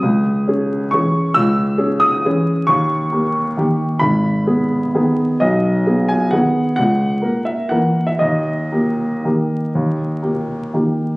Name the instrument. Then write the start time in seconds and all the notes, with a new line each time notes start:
upright piano
Already playing: D#6
0.03 C#2
0.48 C#4 G#4
0.91 E3 C#4 G#4 C#6
1.34 C#2 E6
1.78 C#4 G#4
2.00 D#6
2.25 E3 C#4 G#4
2.67 D#2 C#6
3.12 A#3 G4
3.57 D#3 A#3 G4
3.99 G#1 B5
4.47 B3 G#4
4.95 D#3 B3 G#4
5.40 B1 D#5
5.87 B3 G#4
6.09 G#5
6.31 D#3 B3 G#4 F#5
6.76 C#2 F#5
7.22 A#3 A#4
7.45 E5
7.69 E3 A#3 A#4 F#5
8.07 E5
8.19 D#2 D#5
8.72 A#3 G4
9.24 D#3 A#3 G4
9.75 D#2
10.22 A#3 G4
10.74 D#3 A#3 G4